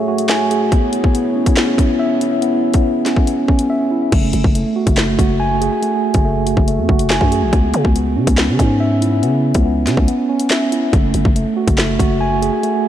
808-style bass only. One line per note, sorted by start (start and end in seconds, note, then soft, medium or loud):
4.12 4.33 F#1 loud
4.34 4.44 F#1 loud
4.44 4.65 F#1 loud
4.87 5.17 F#1 loud
5.19 5.70 F#1 loud
6.15 6.55 F#1 loud
6.57 6.80 F#1 loud
6.78 6.88 F#2 loud
6.89 7.20 F#1 loud
7.21 7.44 F#2 loud
7.42 7.52 A1 loud
7.53 7.73 C#2 loud
7.74 7.84 C#3 loud
7.85 8.18 C#2 loud
8.16 8.27 C#3 loud
8.27 8.50 C#2 loud
8.48 8.59 C#3 loud
8.59 9.24 G#2 loud
9.23 9.53 C#3 loud
9.55 9.88 C#2 loud
9.87 9.97 C#3 loud
9.97 10.08 C#2 loud
10.93 11.14 F#1 loud
11.14 11.25 F#1 loud
11.25 11.46 F#1 loud
11.68 11.98 F#1 loud
11.99 12.51 F#1 loud